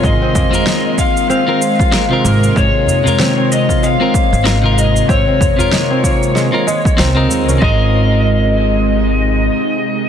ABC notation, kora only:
X:1
M:4/4
L:1/16
Q:"Swing 16ths" 1/4=95
K:Dblyd
V:1 name="Kora"
A, C B, z A,4 C C2 F A, C B, z | A,4 C C2 F A, C B, z A,4 | C C2 F A, C B, z A, z A, z C E z D | A,2 z12 z2 |]